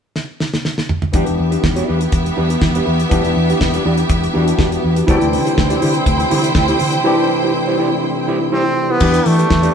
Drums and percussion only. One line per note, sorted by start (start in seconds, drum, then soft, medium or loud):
0.16 snare medium
0.40 snare medium
0.54 snare medium
0.65 snare medium
0.78 snare medium
0.89 mid tom medium
1.02 mid tom medium
1.13 kick loud
1.13 closed hi-hat medium
1.27 closed hi-hat soft
1.52 closed hi-hat soft
1.64 kick medium
1.64 snare medium
1.76 closed hi-hat soft
2.01 closed hi-hat soft
2.12 kick loud
2.12 closed hi-hat medium
2.26 closed hi-hat soft
2.50 closed hi-hat soft
2.62 kick loud
2.62 snare loud
2.75 closed hi-hat soft
3.00 closed hi-hat soft
3.11 kick loud
3.11 closed hi-hat medium
3.25 closed hi-hat soft
3.50 closed hi-hat soft
3.61 kick medium
3.61 snare loud
3.74 closed hi-hat soft
3.98 closed hi-hat soft
4.09 kick loud
4.09 closed hi-hat medium
4.24 closed hi-hat soft
4.48 closed hi-hat soft
4.59 kick loud
4.59 snare medium
4.72 closed hi-hat soft
4.96 closed hi-hat medium
5.08 kick loud
5.08 closed hi-hat medium
5.21 closed hi-hat soft
5.33 open hi-hat medium
5.47 closed hi-hat soft
5.58 kick medium
5.58 snare loud
5.70 closed hi-hat soft
5.82 open hi-hat medium
5.95 closed hi-hat soft
6.06 kick loud
6.06 closed hi-hat medium
6.20 closed hi-hat soft
6.31 open hi-hat medium
6.44 closed hi-hat medium
6.55 kick loud
6.55 snare medium
6.68 closed hi-hat soft
6.80 open hi-hat medium
6.92 closed hi-hat soft
9.00 kick loud
9.00 crash medium
9.14 closed hi-hat soft
9.26 open hi-hat medium
9.39 closed hi-hat soft
9.50 kick medium
9.50 snare loud
9.63 closed hi-hat soft